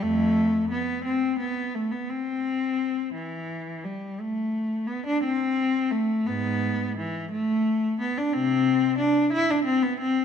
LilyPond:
\new Staff \with { instrumentName = "Cello" } { \time 6/8 \key c \major \tempo 4. = 58 <f, a>4 b8 c'8 b8 a16 b16 | c'4. e4 g8 | a4 b16 d'16 c'4 a8 | <gis, b>4 e8 a4 b16 d'16 |
<c c'>4 d'8 e'16 d'16 c'16 b16 c'8 | }